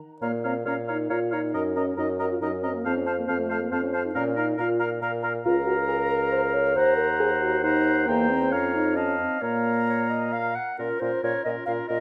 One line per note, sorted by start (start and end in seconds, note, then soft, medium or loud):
0.22 0.61 A#2 medium
0.22 0.32 A#3 medium
0.22 0.32 C#5 soft
0.22 0.32 F5 soft
0.22 0.28 A#5 soft
0.44 0.55 C4 medium
0.44 0.54 C#5 soft
0.44 0.54 F5 soft
0.44 0.52 A#5 soft
0.65 1.05 A#2 soft
0.65 0.77 C#4 medium
0.65 0.75 C#5 soft
0.65 0.76 F5 soft
0.65 0.74 A#5 soft
0.88 1.13 D#4 medium
0.88 0.98 C#5 soft
0.88 0.98 F5 soft
0.88 0.94 A#5 soft
1.10 1.49 A#2 soft
1.10 1.34 F4 medium
1.10 1.20 C#5 soft
1.10 1.20 F5 soft
1.10 1.16 A#5 soft
1.31 1.76 D#4 medium
1.31 1.42 C#5 soft
1.31 1.41 F5 soft
1.31 1.39 A#5 soft
1.53 1.92 F#2 medium
1.53 1.63 A#4 soft
1.53 1.64 D#5 soft
1.53 1.60 A#5 soft
1.75 1.98 C#4 medium
1.75 1.85 A#4 soft
1.75 1.86 D#5 soft
1.75 1.82 A#5 soft
1.96 2.36 F#2 medium
1.96 2.08 D#4 medium
1.96 2.06 A#4 soft
1.96 2.08 D#5 soft
1.96 2.03 A#5 soft
2.18 2.33 F#4 medium
2.18 2.28 A#4 soft
2.18 2.29 D#5 soft
2.18 2.25 A#5 soft
2.31 2.40 F4 medium
2.41 2.80 F#2 soft
2.41 2.52 D#4 medium
2.41 2.51 A#4 soft
2.41 2.52 D#5 soft
2.41 2.48 A#5 soft
2.53 2.64 C#4 medium
2.62 2.76 C4 medium
2.62 2.72 A#4 soft
2.62 2.73 D#5 soft
2.62 2.69 A#5 soft
2.75 2.86 A#3 medium
2.85 3.24 F2 medium
2.85 2.96 C4 medium
2.85 2.95 C5 soft
2.85 2.95 F5 soft
2.85 2.92 A5 soft
2.97 3.01 C#4 medium
3.06 3.17 C4 medium
3.06 3.16 C5 soft
3.06 3.17 F5 soft
3.06 3.12 A5 soft
3.19 3.23 A#3 medium
3.27 3.67 F2 medium
3.27 3.41 C4 medium
3.27 3.37 C5 soft
3.27 3.38 F5 soft
3.27 3.34 A5 soft
3.40 3.63 A3 medium
3.49 3.59 C5 soft
3.49 3.60 F5 soft
3.49 3.57 A5 soft
3.62 3.72 A#3 medium
3.71 4.10 F2 soft
3.71 3.82 C4 medium
3.71 3.81 C5 soft
3.71 3.82 F5 soft
3.71 3.79 A5 soft
3.83 3.93 C#4 medium
3.93 4.03 C5 soft
3.93 4.04 F5 soft
3.93 4.00 A5 soft
4.05 4.14 D#4 medium
4.14 4.54 A#2 medium
4.14 4.39 C#4 medium
4.14 4.24 A#4 medium
4.14 4.25 F5 medium
4.14 4.22 A#5 soft
4.36 4.59 D#4 medium
4.36 4.46 A#4 medium
4.36 4.48 F5 soft
4.36 4.43 A#5 medium
4.57 4.97 A#2 medium
4.57 4.80 F4 medium
4.57 4.67 A#4 soft
4.57 4.69 F5 medium
4.57 4.64 A#5 soft
4.79 4.89 A#4 soft
4.79 4.90 F5 medium
4.79 4.86 A#5 soft
5.01 5.40 A#2 soft
5.01 5.11 A#4 medium
5.01 5.12 F5 medium
5.01 5.08 A#5 medium
5.23 5.33 A#4 medium
5.23 5.33 F5 soft
5.23 5.29 A#5 soft
5.45 6.73 C#2 medium
5.45 5.55 F4 medium
5.45 6.72 A#4 medium
5.45 6.78 F5 medium
5.45 6.54 A#5 medium
5.67 5.76 F#4 medium
5.88 5.98 G#4 medium
6.10 6.20 A#4 medium
6.32 6.42 C5 medium
6.54 6.77 C#5 medium
6.75 8.05 D#2 medium
6.75 7.62 C5 medium
6.75 6.97 C5 loud
6.75 7.63 F#5 medium
6.75 7.62 A#5 medium
6.97 7.07 A#4 medium
7.20 7.30 G#4 medium
7.42 7.62 F#4 medium
7.63 8.09 D#4 medium
7.63 8.07 C5 medium
7.63 8.10 F#5 medium
7.63 8.07 A#5 medium
8.07 8.55 E2 medium
8.07 8.31 A#3 medium
8.07 8.54 C5 medium
8.07 8.53 G5 medium
8.07 8.51 A#5 medium
8.29 8.53 C4 medium
8.52 9.26 F2 medium
8.52 8.74 C#4 medium
8.52 8.98 C#5 soft
8.52 8.96 F5 medium
8.52 8.96 A#5 medium
8.74 8.98 D#4 medium
8.96 9.18 C#4 medium
8.96 9.43 D#5 medium
8.96 9.41 F5 medium
8.96 9.41 A5 soft
9.19 9.41 C4 medium
9.42 10.53 A#2 soft
9.42 10.31 A#3 medium
9.42 9.83 C#5 soft
9.42 10.54 F5 soft
9.42 10.53 A#5 medium
9.88 10.09 C#5 medium
10.10 10.34 D#5 medium
10.33 10.57 F5 medium
10.56 10.78 F#5 medium
10.78 10.89 A#2 soft
10.78 11.00 C#4 soft
10.78 11.00 F4 soft
10.78 11.00 A#4 soft
10.78 11.01 A#4 medium
11.00 11.11 A#2 soft
11.00 11.22 C#4 soft
11.00 11.22 F4 soft
11.00 11.23 A#4 soft
11.00 11.22 C5 soft
11.23 11.33 A#2 soft
11.23 11.44 C#4 soft
11.23 11.45 F4 soft
11.23 11.44 A#4 soft
11.23 11.44 C#5 soft
11.44 11.55 A#2 soft
11.44 11.66 C#4 soft
11.44 11.67 F4 soft
11.44 11.66 A#4 soft
11.44 11.50 D#5 soft
11.66 11.77 A#2 soft
11.66 11.88 C#4 soft
11.66 11.89 F4 soft
11.66 11.88 A#4 soft
11.66 11.72 F5 medium
11.88 12.00 A#2 soft
11.88 12.00 C#4 soft
11.88 12.00 F4 soft
11.88 12.00 A#4 soft
11.88 12.00 D#5 medium